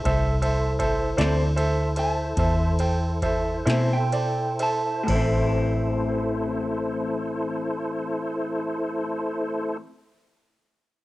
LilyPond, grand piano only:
\new Staff \with { instrumentName = "Grand piano" } { \time 12/8 \key a \minor \tempo 4. = 40 <a' c'' e''>8 <a' c'' e''>8 <a' c'' e''>8 <a' c'' d''>8 <a' c'' e''>8 <a' c'' e''>8 <a' c'' e''>8 <a' c'' g''>8 <a' c'' e''>8 <a' c'' e''>8 <a' c'' d''>8 <a' c'' e''>8 | <a' c'' e''>1. | }